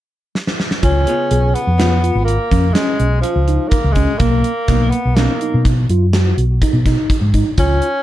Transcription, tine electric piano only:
0.83 F4
1.31 G#4
1.80 F4
2.04 F4
2.52 C#4
2.76 C#4
3.24 F4
3.48 D#4
3.96 C#4
4.21 A#3
4.70 A#3
5.17 C#4
5.42 D#4
5.90 F4
6.15 F#4
6.63 D#4
6.87 D#4
7.34 D#4
7.58 F4

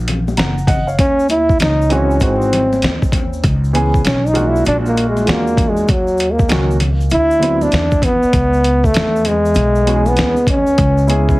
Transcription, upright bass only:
Already playing: A#1
0.38 F#1
0.99 D#2
1.60 C#2
2.21 G#1
2.83 D#2
3.44 C#2
4.05 B1
4.66 A#1
5.27 E2
5.89 D#2
6.50 C#2
7.11 D2
7.72 E2
8.23 muted upright bass stroke
8.33 C#2
8.95 E2
9.56 B1
10.17 D2
10.78 C#2

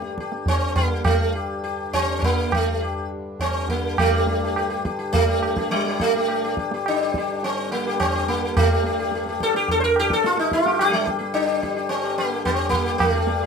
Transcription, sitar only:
Already playing: A3 G4
0.20 G4
0.48 C4
0.76 A#3
1.04 A3
1.35 G4
1.64 G4
1.93 C4
2.19 C4
2.24 A#3
2.54 A3
2.82 G4
3.41 C4
3.70 A#3
3.99 A3 G4
4.15 G4
4.28 G4
4.44 G4
4.57 G4
4.70 G4
4.85 G4
4.99 G4
5.13 A3
5.29 G4
5.58 G4
5.71 G3
5.89 G4
6.01 A3
6.15 G4
6.29 G4
6.44 G4
6.59 G4
6.74 G4
6.88 D4
7.02 G4
7.18 G4
7.44 C4
7.72 A#3
7.87 G4
8.00 C4
8.15 G4
8.28 A#3
8.57 A3
8.70 G4
8.86 G4
8.99 G4
9.15 G4
9.29 G4
9.43 A4
9.56 G4
9.71 A4
9.80 A#4 C5
9.99 G4
10.13 A4
10.26 F4
10.36 D#4 F4
10.53 F4
10.65 G4
10.81 G4
10.90 G3 A3
11.05 G4
11.19 G4
11.34 D4
11.46 G4
11.62 G4
11.76 G4
11.89 C4
12.03 G4
12.18 A#3
12.31 G4
12.45 C4
12.59 G4
12.69 A#3
12.87 G4
12.98 A3
13.15 G4
13.28 G4
13.43 G4

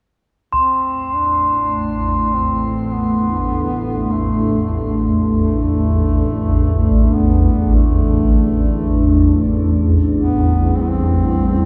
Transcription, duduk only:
0.54 C4
1.15 D4
2.34 C4
2.94 B3
4.13 A3
5.33 A3
7.14 B3
7.75 A3
10.16 B3
10.76 C4
10.81 B3
10.90 C4

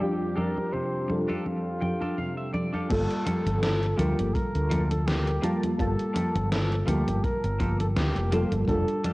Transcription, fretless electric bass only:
2.91 G1
3.46 G1
3.99 D2
4.19 G1
4.35 muted fretless electric bass stroke
4.55 D2
5.79 G1
6.35 G1
6.88 D2
7.07 G1
7.44 G1
7.96 D2
8.16 F1
8.52 G1
8.68 F1

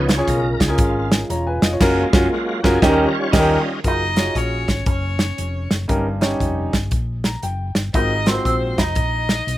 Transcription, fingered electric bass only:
Already playing: C#2
0.27 B1
0.61 C#2
0.79 G#1
1.30 E1
1.62 F1
1.80 F#1
2.13 F#1
2.64 F#1
2.82 D#2
3.33 D#2
3.84 F#1
4.36 A#1
4.68 G#1
4.86 F#1
5.38 F1
5.71 F#1
5.89 G1
6.40 F1
6.73 G1
6.92 A#1
7.43 F#1
7.75 G1
7.94 G#1
8.45 A#1
8.78 F1
8.96 A#1
9.47 B1

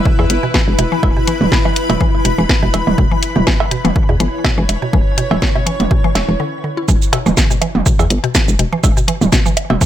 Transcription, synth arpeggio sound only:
0.06 B2
0.19 E3
0.43 B2
0.54 E3
0.79 B2
0.92 E3
1.17 B2
1.27 E3
1.52 B2
1.65 E3
1.90 B2
2.01 E3
2.25 B2
2.38 E3
2.63 B2
2.74 E3
2.98 B2
3.11 E3
3.36 B2
3.47 E3
3.71 B2
3.85 E3
4.09 B2
4.20 E3
4.44 B2
4.58 E3
4.82 B2
4.93 E3
5.18 B2
5.31 E3
5.56 B2
5.66 E3
5.91 B2
6.04 E3
6.29 E3
6.40 D3
6.64 D3
6.77 E4
6.88 E3
7.13 B2
7.26 E3
7.50 B2
7.62 E3
7.86 B2
7.99 E3
8.24 B2
8.35 E3
8.59 B2
8.73 E3
8.97 B2
9.08 E3
9.32 B2
9.46 E3
9.70 B2
9.81 E3

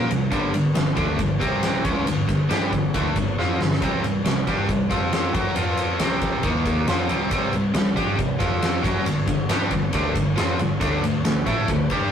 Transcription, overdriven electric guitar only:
0.10 C3 G3
0.31 G2 D3 G3
0.54 G2 D3
0.74 G2 D3
0.96 D3 A3 D4
1.18 G2 D3
1.39 C3 G3 C4
1.83 C#3 G#3 C#4
2.06 G2 D3
2.28 G2 D3
2.49 G3 D4 G4
2.72 G2 D3
2.94 D3 A3 D4
3.17 G2 D3
3.39 F3 C4 F4
3.60 G2 D3
3.82 C3 G3 C4
4.04 C3 G3
4.26 C3 G3
4.48 G3 D4 G4
4.69 C3 G3
4.90 F3 C4 F4
5.34 F#3 C#4 F#4
5.56 F3 C4 F4
6.00 C3 G3 C4
6.44 D#3 A#3 D#4
6.88 F3 C4 F4
7.09 C3 G3 C4
7.30 C3 G3 C4
7.52 C3 G3
7.74 C3 G3
7.96 G3 D4 G4
8.17 C3 G3
8.39 F3 C4 F4
8.82 F#3 C#4 F#4
9.04 G2 D3
9.27 G2 D3
9.49 G3 D4 G4
9.71 G2 D3
9.93 D3 A3 D4
10.15 G2 D3
10.36 F3 C4 F4
10.60 G2 D3
10.81 D3 A3 D4
11.02 D3 A3
11.25 D3 A3
11.46 A3 E4 A4
11.70 D3 A3
11.91 G3 D4 G4

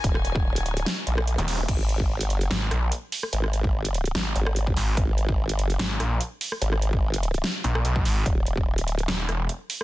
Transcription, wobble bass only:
0.04 D#1
0.61 D1
1.07 A#1
1.59 D#1
1.68 G#1
2.25 G1
3.33 G#1
4.36 G#1
4.97 G#1
5.54 G1
6.62 G#1
8.26 D#1
8.83 D1

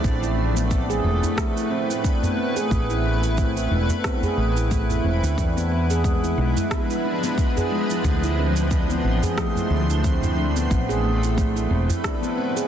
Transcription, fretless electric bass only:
0.04 A1
1.04 E1
2.71 A1
3.71 E1
4.37 A1
5.04 E1
5.23 D2
5.38 E2
6.38 B1
8.04 D2
9.04 A1
9.70 D2
10.71 A1
11.70 E1

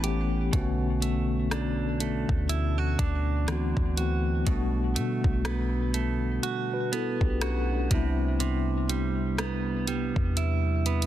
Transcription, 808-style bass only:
Already playing: A1
0.53 B1
2.29 D2
2.99 D2
3.77 D2
4.47 B1
4.96 B2
5.25 B1
7.21 B1
7.91 C2
10.16 E2

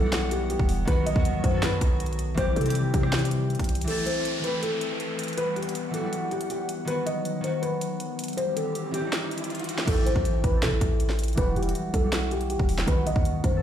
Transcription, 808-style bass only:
Already playing: B1
0.59 E1
0.88 B1
1.16 D#2
1.44 F#2
1.81 B1
2.38 C2
2.56 C3
2.94 C3
3.60 C2
9.88 A1
10.16 A1
10.44 A1
10.63 C3
10.72 A1
10.81 A1
11.38 E1
11.56 E1
11.94 B1
12.60 E1
12.88 B1
13.16 D#2
13.44 F#2

